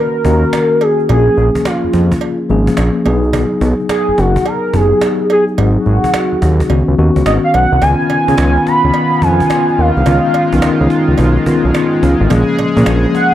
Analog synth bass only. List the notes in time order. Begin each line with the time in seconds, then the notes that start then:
0.25 D#2
1.10 A#1
1.38 A#1
1.84 F2
1.94 F2
2.50 G#1
2.78 A#1
3.06 B1
3.61 B1
4.08 F#1
4.18 F#1
4.74 F#1
5.58 G#1
5.86 G#1
6.32 D#2
6.42 D#2
6.70 C#2
6.88 C#2
6.99 D#2
7.16 C#2
7.26 G#1
7.54 B1
7.72 C2
7.82 C#2
8.10 C#3
8.29 C#3
8.38 C#2
8.84 C#2
9.22 F2
9.79 D#2
9.97 C2
10.07 C#2
10.53 B1
10.63 C#2
10.81 C#2
11.09 C#2
11.19 B1
11.65 B1
12.03 C#2
12.21 A1
12.31 A#1
12.59 A#2
12.77 A#2
12.87 A#1